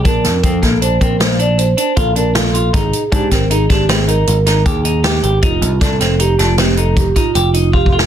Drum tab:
HH |x--x--x--x--x--x--x--x--x--x--x--x--x--x--|x--x--x--x--x--x--x--x--x--x--x--x--x--x--|x--x--x--x--x--x--x--x--x--x--x--x--------|
SD |---o-----o--------o-----------------o-----|---------o-----o--o--------o--------o-----|------o--o-----o--o---------------------o-|
BD |o-----o--o-----o--------------o-----------|o-----o--o-----o--------------o-----------|o-----o-----------------o--o--------o-o---|